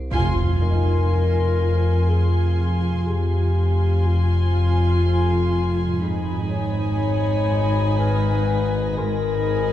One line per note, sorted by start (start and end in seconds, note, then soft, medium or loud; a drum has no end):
0.00 0.12 C2 medium
0.11 3.03 F1 soft
0.11 3.03 F2 soft
0.11 3.03 F2 medium
0.11 0.41 F2 soft
0.11 3.03 F4 soft
0.11 3.03 G#5 medium
0.11 3.03 C6 soft
0.11 impact soft
0.60 0.91 F2 soft
0.60 4.50 D#4 soft
0.60 2.11 A#4 medium
0.60 4.51 D#5 soft
1.11 1.40 F2 soft
1.60 1.89 F2 soft
2.08 2.38 F2 soft
2.08 3.07 G#4 soft
2.58 2.87 F3 soft
3.07 5.99 F1 soft
3.07 5.98 F2 soft
3.07 3.36 F2 soft
3.07 5.98 F2 medium
3.07 5.99 F4 soft
3.07 4.08 G4 soft
3.07 5.99 G#5 soft
3.07 5.99 C6 soft
3.56 3.86 F2 soft
4.05 4.36 F2 soft
4.05 5.53 F4 medium
4.05 7.00 G#5 soft
4.55 4.85 F2 soft
5.53 5.82 F3 soft
6.02 8.97 G#1 medium
6.02 8.94 G#1 soft
6.02 8.93 G#2 soft
6.02 6.32 G#2 soft
6.02 8.94 D#4 soft
6.02 8.93 G#5 soft
6.02 9.73 G#5 soft
6.02 8.94 B5 soft
6.02 9.43 D#6 soft
6.51 6.81 G#2 soft
6.51 8.00 C#5 medium
7.00 7.30 G#2 soft
7.00 9.73 A#6 soft
7.51 7.80 G#2 medium
7.99 8.29 G#2 soft
7.99 8.97 B4 medium
7.99 9.73 F6 soft
8.48 8.78 G#3 soft
8.98 9.73 G#1 soft
8.98 9.73 G#1 medium
8.98 9.73 G#2 soft
8.98 9.27 G#2 medium
8.98 9.73 D#4 medium
8.98 9.73 A#4 medium
8.98 9.73 G#5 medium
8.98 9.73 B5 medium
9.46 9.73 G#2 soft